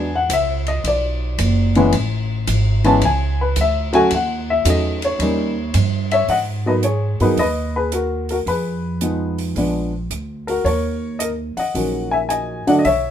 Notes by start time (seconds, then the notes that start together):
Already playing: E2 G#5
0.16 F#5
0.29 C#2 E5, hi-hat pedal, ride
0.67 D#5, ride
0.84 B1 D5, ride
1.38 F#1, hi-hat pedal, ride
1.75 E3 G#3 B3 C#4, ride
1.93 A1, ride
2.47 G#1, hi-hat pedal, ride
2.84 E3 G#3 B3 C#4 A5, ride
3.02 C#2 G#5, ride
3.41 B4
3.56 D2, hi-hat pedal, ride
3.61 E5
3.93 F#3 A3 C#4 F#4 G#5, ride
4.11 D#2 F#5, ride
4.50 E5
4.65 E2 F#3 A3 C#4 D#4, hi-hat pedal, ride
4.70 D#5
5.02 C#5, ride
5.19 D#2 G3 A#3 C#4 D#4, ride
5.74 G2, hi-hat pedal, ride
6.11 C#5 E5, ride
6.28 G#2 D#5 F#5, open hi-hat
6.66 F#3 A#3 B3 D#4 B4 D#5
6.83 G#4 C#5, closed hi-hat
7.20 G2 F#3 A#3 B3 D#4 G#4 B4, open hi-hat
7.37 D#2 B4 D#5, open hi-hat
7.76 G#4 B4
7.92 F#4 A#4, closed hi-hat
8.29 F#4 A#4, open hi-hat
8.46 F2 G#4 B4, open hi-hat
9.01 F3 G#3 B3 D#4, closed hi-hat
9.38 open hi-hat
9.56 A#1 F3 G#3 B3 D4, open hi-hat
10.10 D2, closed hi-hat
10.47 F#4 A#4, open hi-hat
10.64 D#2 A#4 C#5, open hi-hat
11.19 A#4 D#5, closed hi-hat
11.57 D#5 F#5, muted upright bass stroke, open hi-hat
11.75 A#1 D#3 F#3 A#3 C#4, open hi-hat
12.11 E5 G#5
12.29 D#5 G#5, closed hi-hat
12.67 D3 F#3 A3 D4 D#5 F#5, muted upright bass stroke, open hi-hat
12.79 D#5
12.85 B1 C#5 E5, open hi-hat